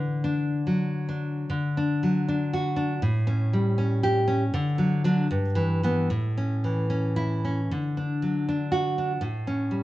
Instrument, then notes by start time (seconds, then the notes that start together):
nylon-string guitar
Already playing: D3
0.24 D4
0.67 F#3
1.09 D4
1.50 D3
1.77 D4
2.03 F#3
2.29 D4
2.53 F#4
2.76 D4
3.02 A2
3.27 C#4
3.53 G3
3.78 C#4
4.03 G4
4.28 C#4
4.54 D3
4.78 F#3
5.04 F#3 D4
5.31 G2
5.55 E3
5.83 E3 B3
6.10 A2
6.38 C#4
6.64 E3
6.90 C#4
7.16 E4
7.45 C#4
7.71 D3
7.97 D4
8.22 F#3
8.49 D4
8.72 F#4
8.98 D4
9.21 A2
9.47 C#4
9.71 G3